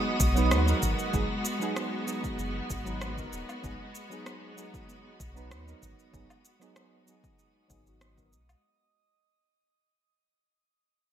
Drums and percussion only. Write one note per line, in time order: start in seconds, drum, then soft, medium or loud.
0.20 kick medium
0.20 shaker medium
0.37 shaker soft
0.51 cross-stick medium
0.51 shaker soft
0.68 shaker soft
0.83 kick medium
0.83 shaker medium
0.99 shaker soft
1.14 kick loud
1.14 shaker soft
1.45 shaker medium
1.62 shaker soft
1.76 cross-stick medium
1.76 shaker soft
2.08 shaker medium
2.24 kick medium
2.24 shaker soft
2.39 shaker soft
2.70 kick medium
2.70 shaker medium
2.87 shaker soft
3.01 cross-stick medium
3.01 shaker soft
3.18 kick medium
3.18 shaker soft
3.33 shaker medium
3.49 low woodblock medium
3.49 shaker soft
3.64 kick loud
3.64 shaker soft
3.95 shaker medium
4.12 shaker soft
4.26 cross-stick medium
4.26 shaker soft
4.58 shaker medium
4.74 kick medium
4.74 shaker soft
4.89 shaker soft
5.20 kick medium
5.20 shaker medium
5.37 shaker soft
5.51 cross-stick medium
5.51 shaker soft
5.68 shaker soft
5.82 kick soft
5.82 shaker medium
5.99 shaker soft
6.14 kick loud
6.14 shaker soft
6.30 low woodblock medium
6.30 shaker soft
6.45 shaker medium
6.62 cross-stick soft
6.62 shaker soft
6.76 cross-stick medium
6.76 shaker soft
7.08 shaker medium
7.24 kick medium
7.24 shaker soft
7.39 shaker soft
7.70 kick medium
7.70 shaker medium
7.87 shaker soft
8.01 cross-stick medium
8.01 shaker soft
8.18 kick medium
8.18 shaker soft
8.33 shaker medium
8.49 low woodblock medium
8.49 shaker soft